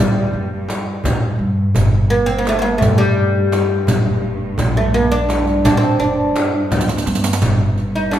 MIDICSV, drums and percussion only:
0, 0, Header, 1, 4, 480
1, 0, Start_track
1, 0, Tempo, 707547
1, 1191, Time_signature, 4, 2, 24, 8
1, 5557, End_track
2, 0, Start_track
2, 0, Title_t, "Darbuka"
2, 222, Note_on_c, 9, 62, 24
2, 290, Note_off_c, 9, 62, 0
2, 465, Note_on_c, 9, 63, 70
2, 533, Note_off_c, 9, 63, 0
2, 704, Note_on_c, 9, 64, 78
2, 771, Note_off_c, 9, 64, 0
2, 1067, Note_on_c, 9, 62, 25
2, 1135, Note_off_c, 9, 62, 0
2, 1184, Note_on_c, 9, 64, 91
2, 1252, Note_off_c, 9, 64, 0
2, 1423, Note_on_c, 9, 62, 26
2, 1491, Note_off_c, 9, 62, 0
2, 1665, Note_on_c, 9, 63, 67
2, 1733, Note_off_c, 9, 63, 0
2, 1789, Note_on_c, 9, 62, 25
2, 1857, Note_off_c, 9, 62, 0
2, 1906, Note_on_c, 9, 64, 93
2, 1974, Note_off_c, 9, 64, 0
2, 2151, Note_on_c, 9, 62, 28
2, 2218, Note_off_c, 9, 62, 0
2, 2391, Note_on_c, 9, 63, 79
2, 2458, Note_off_c, 9, 63, 0
2, 2625, Note_on_c, 9, 64, 81
2, 2693, Note_off_c, 9, 64, 0
2, 2988, Note_on_c, 9, 62, 28
2, 3056, Note_off_c, 9, 62, 0
2, 3105, Note_on_c, 9, 64, 97
2, 3173, Note_off_c, 9, 64, 0
2, 3347, Note_on_c, 9, 62, 27
2, 3415, Note_off_c, 9, 62, 0
2, 3587, Note_on_c, 9, 63, 67
2, 3655, Note_off_c, 9, 63, 0
2, 3713, Note_on_c, 9, 62, 28
2, 3781, Note_off_c, 9, 62, 0
2, 3829, Note_on_c, 9, 64, 82
2, 3897, Note_off_c, 9, 64, 0
2, 3952, Note_on_c, 9, 62, 27
2, 4020, Note_off_c, 9, 62, 0
2, 4312, Note_on_c, 9, 63, 76
2, 4380, Note_off_c, 9, 63, 0
2, 4550, Note_on_c, 9, 63, 48
2, 4610, Note_on_c, 9, 62, 55
2, 4618, Note_off_c, 9, 63, 0
2, 4670, Note_on_c, 9, 63, 65
2, 4678, Note_off_c, 9, 62, 0
2, 4731, Note_on_c, 9, 62, 69
2, 4738, Note_off_c, 9, 63, 0
2, 4790, Note_on_c, 9, 63, 70
2, 4798, Note_off_c, 9, 62, 0
2, 4854, Note_on_c, 9, 62, 80
2, 4858, Note_off_c, 9, 63, 0
2, 4913, Note_on_c, 9, 63, 88
2, 4922, Note_off_c, 9, 62, 0
2, 4975, Note_on_c, 9, 62, 85
2, 4981, Note_off_c, 9, 63, 0
2, 5032, Note_on_c, 9, 64, 96
2, 5043, Note_off_c, 9, 62, 0
2, 5100, Note_off_c, 9, 64, 0
2, 5513, Note_on_c, 9, 63, 74
2, 5557, Note_off_c, 9, 63, 0
2, 5557, End_track
3, 0, Start_track
3, 0, Title_t, "Frame drum"
3, 473, Note_on_c, 9, 64, 61
3, 541, Note_off_c, 9, 64, 0
3, 713, Note_on_c, 9, 64, 82
3, 781, Note_off_c, 9, 64, 0
3, 1191, Note_on_c, 9, 64, 75
3, 1259, Note_off_c, 9, 64, 0
3, 1675, Note_on_c, 9, 64, 61
3, 1743, Note_off_c, 9, 64, 0
3, 1917, Note_on_c, 9, 64, 86
3, 1985, Note_off_c, 9, 64, 0
3, 2397, Note_on_c, 9, 64, 61
3, 2465, Note_off_c, 9, 64, 0
3, 2633, Note_on_c, 9, 64, 86
3, 2701, Note_off_c, 9, 64, 0
3, 3115, Note_on_c, 9, 64, 84
3, 3183, Note_off_c, 9, 64, 0
3, 3595, Note_on_c, 9, 64, 69
3, 3663, Note_off_c, 9, 64, 0
3, 3836, Note_on_c, 9, 64, 83
3, 3904, Note_off_c, 9, 64, 0
3, 4318, Note_on_c, 9, 64, 73
3, 4386, Note_off_c, 9, 64, 0
3, 4556, Note_on_c, 9, 64, 85
3, 4624, Note_off_c, 9, 64, 0
3, 5039, Note_on_c, 9, 64, 85
3, 5106, Note_off_c, 9, 64, 0
3, 5517, Note_on_c, 9, 64, 64
3, 5557, Note_off_c, 9, 64, 0
3, 5557, End_track
4, 0, Start_track
4, 0, Title_t, "Riq"
4, 474, Note_on_c, 9, 54, 45
4, 542, Note_off_c, 9, 54, 0
4, 714, Note_on_c, 9, 54, 65
4, 782, Note_off_c, 9, 54, 0
4, 1191, Note_on_c, 9, 54, 57
4, 1259, Note_off_c, 9, 54, 0
4, 1432, Note_on_c, 9, 54, 16
4, 1500, Note_off_c, 9, 54, 0
4, 1555, Note_on_c, 9, 54, 18
4, 1623, Note_off_c, 9, 54, 0
4, 1675, Note_on_c, 9, 54, 49
4, 1743, Note_off_c, 9, 54, 0
4, 1915, Note_on_c, 9, 54, 59
4, 1983, Note_off_c, 9, 54, 0
4, 2393, Note_on_c, 9, 54, 49
4, 2461, Note_off_c, 9, 54, 0
4, 2634, Note_on_c, 9, 54, 66
4, 2702, Note_off_c, 9, 54, 0
4, 3112, Note_on_c, 9, 54, 54
4, 3180, Note_off_c, 9, 54, 0
4, 3350, Note_on_c, 9, 54, 17
4, 3418, Note_off_c, 9, 54, 0
4, 3475, Note_on_c, 9, 54, 16
4, 3543, Note_off_c, 9, 54, 0
4, 3594, Note_on_c, 9, 54, 51
4, 3662, Note_off_c, 9, 54, 0
4, 3714, Note_on_c, 9, 54, 17
4, 3782, Note_off_c, 9, 54, 0
4, 3834, Note_on_c, 9, 54, 65
4, 3902, Note_off_c, 9, 54, 0
4, 3956, Note_on_c, 9, 54, 17
4, 4023, Note_off_c, 9, 54, 0
4, 4077, Note_on_c, 9, 54, 19
4, 4145, Note_off_c, 9, 54, 0
4, 4312, Note_on_c, 9, 54, 51
4, 4380, Note_off_c, 9, 54, 0
4, 4557, Note_on_c, 9, 54, 60
4, 4619, Note_off_c, 9, 54, 0
4, 4619, Note_on_c, 9, 54, 68
4, 4675, Note_off_c, 9, 54, 0
4, 4675, Note_on_c, 9, 54, 65
4, 4737, Note_off_c, 9, 54, 0
4, 4737, Note_on_c, 9, 54, 65
4, 4796, Note_off_c, 9, 54, 0
4, 4796, Note_on_c, 9, 54, 67
4, 4852, Note_off_c, 9, 54, 0
4, 4852, Note_on_c, 9, 54, 74
4, 4911, Note_off_c, 9, 54, 0
4, 4911, Note_on_c, 9, 54, 89
4, 4973, Note_off_c, 9, 54, 0
4, 4973, Note_on_c, 9, 54, 98
4, 5032, Note_off_c, 9, 54, 0
4, 5032, Note_on_c, 9, 54, 65
4, 5100, Note_off_c, 9, 54, 0
4, 5275, Note_on_c, 9, 54, 17
4, 5343, Note_off_c, 9, 54, 0
4, 5403, Note_on_c, 9, 54, 19
4, 5471, Note_off_c, 9, 54, 0
4, 5518, Note_on_c, 9, 54, 51
4, 5557, Note_off_c, 9, 54, 0
4, 5557, End_track
0, 0, End_of_file